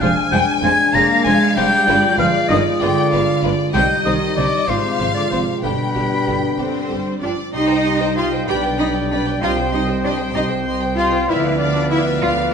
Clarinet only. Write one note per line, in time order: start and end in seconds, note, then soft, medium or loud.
0.01 0.15 F5 medium
0.32 0.46 G5 loud
0.63 0.95 G#5 loud
0.93 1.24 A#5 loud
1.24 1.39 G#5 loud
1.56 2.17 G5 loud
2.18 2.48 F5 loud
2.48 2.63 D#5 loud
2.80 3.42 D5 loud
3.74 3.88 G5 loud
4.05 4.36 D#5 loud
4.36 4.69 D5 medium
4.67 5.13 C5 medium
5.14 5.30 D5 medium
5.30 5.45 C5 medium
5.63 7.20 B4 medium
7.54 8.49 D#5 medium
8.48 9.41 D5 medium
9.42 11.25 C5 medium
11.29 12.54 B4 medium